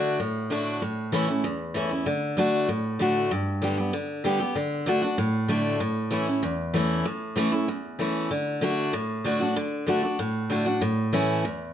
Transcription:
Already playing: D3 A3 D4 F#4
0.20 A2
0.50 D3 A3 D4 F#4
0.82 A2
1.12 E3 A3 C#4 E4
1.28 C#4 E4
1.44 E2
1.74 E3 A3 C#4 E4
1.91 C#4 E4
2.06 D3
2.37 D3 A3 D4 F#4
2.69 A2
2.99 D3 A3 D4 F#4
3.31 G2
3.62 D3 G3 B3 G4
3.77 B3 G4
3.93 D3
4.24 D3 G3 B3 G4
4.40 B3 G4
4.55 D3
4.86 D3 A3 D4 F#4
5.02 D4 F#4
5.18 A2
5.48 D3 A3 D4 F#4
5.80 A2
6.11 E3 A3 C#4 E4
6.27 C#4 E4
6.43 E2
6.74 E3 A3 C#4 E4
7.05 A2
7.36 E3 A3 C#4 E4
7.52 C#4 E4
7.68 E2
7.99 E3 A3 C#4 E4
8.31 D3
8.61 D3 A3 D4 F#4
8.93 A2
9.24 D3 A3 D4 F#4
9.40 D4 F#4
9.56 D3
9.86 D3 A3 D4 F#4
10.03 D4 F#4
10.19 A2
10.50 D3 A3 D4 F#4
10.66 D4 F#4
10.81 A2
11.13 E3 A3 C#4 E4
11.45 E2

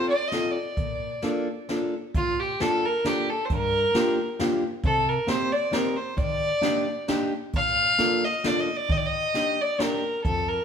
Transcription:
Already playing: C4 D#4 F4 A4
0.09 D5
0.28 D#5, snare, closed hi-hat
0.32 C4 D#4 F4 A4
0.51 D5
0.77 A#2, kick, closed hi-hat
1.22 A#3 D4 F4 A4, snare, closed hi-hat
1.69 A#3 D4 F4 A4, snare, closed hi-hat
2.14 A#2 F4, kick, closed hi-hat
2.40 G4
2.60 A#3 D4 F4 A4, snare, closed hi-hat
2.85 A#4
3.05 A#3 D4 F4 G4 A4, snare, closed hi-hat
3.30 A4
3.45 C5
3.50 G2 A#4, kick, closed hi-hat
3.95 A#3 D4 F4 G4, snare, closed hi-hat
4.39 A#3 D4 F4 G4, snare, closed hi-hat
4.83 C3 A4, kick, closed hi-hat
5.08 A#4
5.27 A#3 C4 D#4 G4 C5, snare, closed hi-hat
5.52 D5
5.71 A#3 C4 D#4 G4 A#4, snare, closed hi-hat
5.97 C5
6.17 D#3 D5, kick, closed hi-hat
6.61 A#3 D4 D#4 G4, snare, closed hi-hat
7.08 A#3 D4 D#4 G4, snare, closed hi-hat
7.53 A#2 F5, kick, closed hi-hat
7.99 A#3 D4 F4 A4, snare, closed hi-hat
8.24 D#5
8.44 A#3 D4 F4 A4 D5, snare, closed hi-hat
8.59 D#5
8.77 D5
8.89 D#3 D#5, kick, closed hi-hat
8.97 D5
9.06 D#5
9.34 A#3 D4 D#4 G4, snare, closed hi-hat
9.61 D5
9.79 A#3 D4 D#4 G4 A#4, snare, closed hi-hat
10.25 F2 A4, kick, closed hi-hat
10.48 A#4

